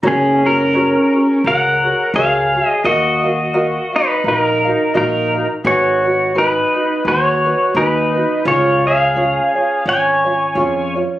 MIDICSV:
0, 0, Header, 1, 4, 480
1, 0, Start_track
1, 0, Key_signature, 6, "major"
1, 0, Tempo, 701754
1, 26, Time_signature, 4, 2, 24, 8
1, 7655, End_track
2, 0, Start_track
2, 0, Title_t, "Pedal steel guitar"
2, 0, Program_c, 0, 26
2, 49, Note_on_c, 0, 61, 59
2, 53, Note_on_c, 0, 68, 78
2, 289, Note_off_c, 0, 61, 0
2, 311, Note_on_c, 0, 61, 53
2, 314, Note_off_c, 0, 68, 0
2, 317, Note_on_c, 0, 70, 73
2, 965, Note_off_c, 0, 61, 0
2, 999, Note_off_c, 0, 70, 0
2, 1007, Note_on_c, 0, 70, 57
2, 1009, Note_on_c, 0, 78, 82
2, 1448, Note_off_c, 0, 70, 0
2, 1473, Note_off_c, 0, 78, 0
2, 1476, Note_on_c, 0, 68, 64
2, 1476, Note_on_c, 0, 77, 84
2, 1838, Note_off_c, 0, 77, 0
2, 1838, Note_on_c, 0, 75, 84
2, 1922, Note_off_c, 0, 68, 0
2, 1949, Note_off_c, 0, 75, 0
2, 1952, Note_on_c, 0, 75, 75
2, 1958, Note_on_c, 0, 66, 62
2, 2672, Note_off_c, 0, 66, 0
2, 2707, Note_on_c, 0, 63, 58
2, 2709, Note_on_c, 0, 71, 72
2, 2719, Note_off_c, 0, 75, 0
2, 2895, Note_off_c, 0, 63, 0
2, 2916, Note_off_c, 0, 71, 0
2, 2929, Note_on_c, 0, 71, 74
2, 2931, Note_on_c, 0, 63, 65
2, 3005, Note_off_c, 0, 71, 0
2, 3005, Note_on_c, 0, 70, 74
2, 3369, Note_off_c, 0, 63, 0
2, 3391, Note_off_c, 0, 70, 0
2, 3400, Note_on_c, 0, 63, 60
2, 3401, Note_on_c, 0, 70, 77
2, 3739, Note_off_c, 0, 70, 0
2, 3741, Note_off_c, 0, 63, 0
2, 3878, Note_on_c, 0, 73, 76
2, 3884, Note_on_c, 0, 66, 58
2, 4325, Note_off_c, 0, 66, 0
2, 4363, Note_off_c, 0, 73, 0
2, 4366, Note_on_c, 0, 71, 77
2, 4367, Note_on_c, 0, 63, 61
2, 4807, Note_off_c, 0, 63, 0
2, 4840, Note_off_c, 0, 71, 0
2, 4843, Note_on_c, 0, 73, 86
2, 4846, Note_on_c, 0, 66, 68
2, 5287, Note_off_c, 0, 66, 0
2, 5310, Note_off_c, 0, 73, 0
2, 5312, Note_on_c, 0, 71, 74
2, 5318, Note_on_c, 0, 63, 66
2, 5763, Note_off_c, 0, 63, 0
2, 5796, Note_off_c, 0, 71, 0
2, 5799, Note_on_c, 0, 73, 93
2, 5804, Note_on_c, 0, 65, 62
2, 6045, Note_off_c, 0, 65, 0
2, 6066, Note_on_c, 0, 77, 79
2, 6068, Note_off_c, 0, 73, 0
2, 6074, Note_on_c, 0, 68, 68
2, 6726, Note_off_c, 0, 68, 0
2, 6764, Note_on_c, 0, 80, 78
2, 6768, Note_off_c, 0, 77, 0
2, 6771, Note_on_c, 0, 73, 65
2, 7476, Note_off_c, 0, 80, 0
2, 7480, Note_off_c, 0, 73, 0
2, 7655, End_track
3, 0, Start_track
3, 0, Title_t, "Ukulele"
3, 0, Program_c, 1, 24
3, 18, Note_on_c, 1, 70, 69
3, 26, Note_on_c, 1, 66, 78
3, 27, Note_on_c, 1, 68, 72
3, 28, Note_on_c, 1, 73, 74
3, 286, Note_off_c, 1, 73, 0
3, 290, Note_off_c, 1, 68, 0
3, 292, Note_off_c, 1, 70, 0
3, 295, Note_off_c, 1, 66, 0
3, 295, Note_on_c, 1, 73, 49
3, 298, Note_on_c, 1, 68, 46
3, 309, Note_on_c, 1, 66, 41
3, 499, Note_off_c, 1, 73, 0
3, 500, Note_off_c, 1, 66, 0
3, 501, Note_off_c, 1, 68, 0
3, 502, Note_on_c, 1, 70, 78
3, 508, Note_on_c, 1, 66, 74
3, 509, Note_on_c, 1, 68, 69
3, 512, Note_on_c, 1, 73, 81
3, 765, Note_off_c, 1, 73, 0
3, 770, Note_off_c, 1, 68, 0
3, 770, Note_off_c, 1, 70, 0
3, 773, Note_on_c, 1, 73, 45
3, 776, Note_off_c, 1, 66, 0
3, 778, Note_on_c, 1, 68, 37
3, 784, Note_on_c, 1, 66, 38
3, 980, Note_off_c, 1, 66, 0
3, 981, Note_off_c, 1, 73, 0
3, 984, Note_on_c, 1, 70, 52
3, 986, Note_off_c, 1, 68, 0
3, 988, Note_on_c, 1, 66, 52
3, 995, Note_on_c, 1, 68, 58
3, 997, Note_on_c, 1, 73, 58
3, 1242, Note_off_c, 1, 73, 0
3, 1247, Note_off_c, 1, 70, 0
3, 1249, Note_off_c, 1, 68, 0
3, 1250, Note_on_c, 1, 73, 48
3, 1256, Note_off_c, 1, 66, 0
3, 1257, Note_on_c, 1, 68, 47
3, 1263, Note_on_c, 1, 66, 42
3, 1461, Note_off_c, 1, 73, 0
3, 1464, Note_off_c, 1, 66, 0
3, 1465, Note_off_c, 1, 68, 0
3, 1467, Note_on_c, 1, 70, 74
3, 1473, Note_on_c, 1, 66, 76
3, 1476, Note_on_c, 1, 68, 81
3, 1476, Note_on_c, 1, 73, 86
3, 1725, Note_off_c, 1, 73, 0
3, 1730, Note_off_c, 1, 70, 0
3, 1731, Note_off_c, 1, 68, 0
3, 1733, Note_on_c, 1, 73, 46
3, 1735, Note_off_c, 1, 66, 0
3, 1739, Note_on_c, 1, 68, 43
3, 1744, Note_on_c, 1, 66, 39
3, 1937, Note_off_c, 1, 66, 0
3, 1939, Note_off_c, 1, 73, 0
3, 1941, Note_on_c, 1, 75, 73
3, 1942, Note_off_c, 1, 68, 0
3, 1945, Note_on_c, 1, 66, 79
3, 1945, Note_on_c, 1, 70, 74
3, 1950, Note_on_c, 1, 77, 77
3, 2203, Note_off_c, 1, 77, 0
3, 2207, Note_off_c, 1, 70, 0
3, 2211, Note_on_c, 1, 77, 53
3, 2212, Note_off_c, 1, 75, 0
3, 2213, Note_off_c, 1, 66, 0
3, 2215, Note_on_c, 1, 70, 44
3, 2225, Note_on_c, 1, 66, 43
3, 2412, Note_off_c, 1, 66, 0
3, 2413, Note_off_c, 1, 70, 0
3, 2417, Note_off_c, 1, 77, 0
3, 2419, Note_on_c, 1, 75, 68
3, 2420, Note_on_c, 1, 66, 83
3, 2422, Note_on_c, 1, 70, 77
3, 2425, Note_on_c, 1, 77, 69
3, 2678, Note_off_c, 1, 77, 0
3, 2686, Note_on_c, 1, 77, 39
3, 2690, Note_off_c, 1, 75, 0
3, 2691, Note_off_c, 1, 66, 0
3, 2692, Note_off_c, 1, 70, 0
3, 2701, Note_on_c, 1, 66, 32
3, 2898, Note_off_c, 1, 66, 0
3, 2899, Note_off_c, 1, 77, 0
3, 2899, Note_on_c, 1, 75, 48
3, 2906, Note_on_c, 1, 66, 48
3, 2907, Note_on_c, 1, 70, 55
3, 2915, Note_on_c, 1, 77, 60
3, 3168, Note_off_c, 1, 77, 0
3, 3170, Note_off_c, 1, 75, 0
3, 3174, Note_off_c, 1, 66, 0
3, 3174, Note_off_c, 1, 70, 0
3, 3176, Note_on_c, 1, 77, 52
3, 3183, Note_on_c, 1, 70, 44
3, 3190, Note_on_c, 1, 66, 40
3, 3374, Note_off_c, 1, 66, 0
3, 3375, Note_off_c, 1, 70, 0
3, 3379, Note_on_c, 1, 75, 85
3, 3381, Note_off_c, 1, 77, 0
3, 3383, Note_on_c, 1, 66, 80
3, 3383, Note_on_c, 1, 70, 90
3, 3389, Note_on_c, 1, 77, 86
3, 3645, Note_off_c, 1, 77, 0
3, 3650, Note_off_c, 1, 70, 0
3, 3650, Note_off_c, 1, 75, 0
3, 3652, Note_off_c, 1, 66, 0
3, 3653, Note_on_c, 1, 77, 45
3, 3658, Note_on_c, 1, 70, 38
3, 3665, Note_on_c, 1, 66, 40
3, 3858, Note_off_c, 1, 66, 0
3, 3858, Note_on_c, 1, 68, 76
3, 3862, Note_off_c, 1, 77, 0
3, 3862, Note_on_c, 1, 63, 70
3, 3864, Note_off_c, 1, 70, 0
3, 3867, Note_on_c, 1, 66, 75
3, 3869, Note_on_c, 1, 71, 86
3, 4127, Note_off_c, 1, 71, 0
3, 4130, Note_off_c, 1, 68, 0
3, 4132, Note_off_c, 1, 63, 0
3, 4134, Note_off_c, 1, 66, 0
3, 4135, Note_on_c, 1, 71, 53
3, 4146, Note_on_c, 1, 66, 52
3, 4150, Note_on_c, 1, 63, 45
3, 4334, Note_off_c, 1, 63, 0
3, 4338, Note_off_c, 1, 66, 0
3, 4340, Note_off_c, 1, 71, 0
3, 4341, Note_on_c, 1, 68, 66
3, 4342, Note_on_c, 1, 63, 73
3, 4346, Note_on_c, 1, 66, 80
3, 4349, Note_on_c, 1, 71, 78
3, 4604, Note_off_c, 1, 71, 0
3, 4610, Note_off_c, 1, 66, 0
3, 4611, Note_off_c, 1, 68, 0
3, 4612, Note_off_c, 1, 63, 0
3, 4613, Note_on_c, 1, 71, 41
3, 4618, Note_on_c, 1, 66, 36
3, 4626, Note_on_c, 1, 63, 37
3, 4819, Note_off_c, 1, 63, 0
3, 4820, Note_on_c, 1, 68, 54
3, 4821, Note_off_c, 1, 66, 0
3, 4822, Note_off_c, 1, 71, 0
3, 4827, Note_on_c, 1, 63, 52
3, 4829, Note_on_c, 1, 66, 56
3, 4834, Note_on_c, 1, 71, 59
3, 5090, Note_off_c, 1, 71, 0
3, 5091, Note_off_c, 1, 68, 0
3, 5094, Note_off_c, 1, 63, 0
3, 5095, Note_off_c, 1, 66, 0
3, 5098, Note_on_c, 1, 71, 54
3, 5104, Note_on_c, 1, 66, 46
3, 5111, Note_on_c, 1, 63, 39
3, 5298, Note_off_c, 1, 63, 0
3, 5301, Note_off_c, 1, 66, 0
3, 5303, Note_off_c, 1, 71, 0
3, 5304, Note_on_c, 1, 68, 75
3, 5306, Note_on_c, 1, 63, 82
3, 5310, Note_on_c, 1, 66, 76
3, 5311, Note_on_c, 1, 71, 81
3, 5565, Note_off_c, 1, 71, 0
3, 5573, Note_off_c, 1, 68, 0
3, 5573, Note_on_c, 1, 71, 54
3, 5574, Note_off_c, 1, 63, 0
3, 5576, Note_off_c, 1, 66, 0
3, 5583, Note_on_c, 1, 66, 41
3, 5590, Note_on_c, 1, 63, 38
3, 5778, Note_on_c, 1, 68, 68
3, 5779, Note_off_c, 1, 63, 0
3, 5781, Note_on_c, 1, 61, 75
3, 5782, Note_off_c, 1, 66, 0
3, 5783, Note_off_c, 1, 71, 0
3, 5785, Note_on_c, 1, 65, 73
3, 5785, Note_on_c, 1, 73, 77
3, 6043, Note_off_c, 1, 73, 0
3, 6050, Note_off_c, 1, 68, 0
3, 6051, Note_off_c, 1, 61, 0
3, 6051, Note_off_c, 1, 65, 0
3, 6052, Note_on_c, 1, 73, 58
3, 6060, Note_on_c, 1, 65, 45
3, 6065, Note_on_c, 1, 61, 39
3, 6258, Note_off_c, 1, 61, 0
3, 6261, Note_off_c, 1, 65, 0
3, 6262, Note_off_c, 1, 73, 0
3, 6263, Note_on_c, 1, 68, 68
3, 6267, Note_on_c, 1, 61, 62
3, 6269, Note_on_c, 1, 65, 79
3, 6271, Note_on_c, 1, 73, 73
3, 6524, Note_off_c, 1, 73, 0
3, 6532, Note_on_c, 1, 73, 44
3, 6533, Note_off_c, 1, 65, 0
3, 6533, Note_off_c, 1, 68, 0
3, 6534, Note_off_c, 1, 61, 0
3, 6541, Note_on_c, 1, 65, 35
3, 6545, Note_on_c, 1, 61, 33
3, 6735, Note_off_c, 1, 61, 0
3, 6741, Note_on_c, 1, 68, 55
3, 6742, Note_off_c, 1, 65, 0
3, 6742, Note_off_c, 1, 73, 0
3, 6743, Note_on_c, 1, 61, 47
3, 6750, Note_on_c, 1, 65, 55
3, 6754, Note_on_c, 1, 73, 56
3, 7002, Note_off_c, 1, 73, 0
3, 7009, Note_off_c, 1, 65, 0
3, 7010, Note_on_c, 1, 73, 50
3, 7012, Note_off_c, 1, 68, 0
3, 7013, Note_off_c, 1, 61, 0
3, 7017, Note_on_c, 1, 65, 50
3, 7021, Note_on_c, 1, 61, 37
3, 7217, Note_off_c, 1, 61, 0
3, 7218, Note_off_c, 1, 65, 0
3, 7221, Note_off_c, 1, 73, 0
3, 7222, Note_on_c, 1, 68, 76
3, 7225, Note_on_c, 1, 61, 74
3, 7226, Note_on_c, 1, 65, 73
3, 7231, Note_on_c, 1, 73, 85
3, 7483, Note_off_c, 1, 73, 0
3, 7490, Note_off_c, 1, 65, 0
3, 7491, Note_on_c, 1, 73, 48
3, 7493, Note_off_c, 1, 68, 0
3, 7494, Note_off_c, 1, 61, 0
3, 7498, Note_on_c, 1, 65, 45
3, 7503, Note_on_c, 1, 61, 37
3, 7655, Note_off_c, 1, 61, 0
3, 7655, Note_off_c, 1, 65, 0
3, 7655, Note_off_c, 1, 73, 0
3, 7655, End_track
4, 0, Start_track
4, 0, Title_t, "Upright bass"
4, 0, Program_c, 2, 32
4, 22, Note_on_c, 2, 30, 87
4, 646, Note_off_c, 2, 30, 0
4, 987, Note_on_c, 2, 37, 80
4, 1297, Note_off_c, 2, 37, 0
4, 1461, Note_on_c, 2, 37, 87
4, 1774, Note_off_c, 2, 37, 0
4, 1945, Note_on_c, 2, 39, 86
4, 2568, Note_off_c, 2, 39, 0
4, 2901, Note_on_c, 2, 34, 76
4, 3213, Note_off_c, 2, 34, 0
4, 3386, Note_on_c, 2, 34, 85
4, 3696, Note_off_c, 2, 34, 0
4, 3861, Note_on_c, 2, 32, 100
4, 4485, Note_off_c, 2, 32, 0
4, 4821, Note_on_c, 2, 39, 76
4, 5133, Note_off_c, 2, 39, 0
4, 5297, Note_on_c, 2, 39, 89
4, 5611, Note_off_c, 2, 39, 0
4, 5781, Note_on_c, 2, 37, 97
4, 6406, Note_off_c, 2, 37, 0
4, 6741, Note_on_c, 2, 32, 76
4, 7218, Note_on_c, 2, 41, 83
4, 7228, Note_off_c, 2, 32, 0
4, 7532, Note_off_c, 2, 41, 0
4, 7655, End_track
0, 0, End_of_file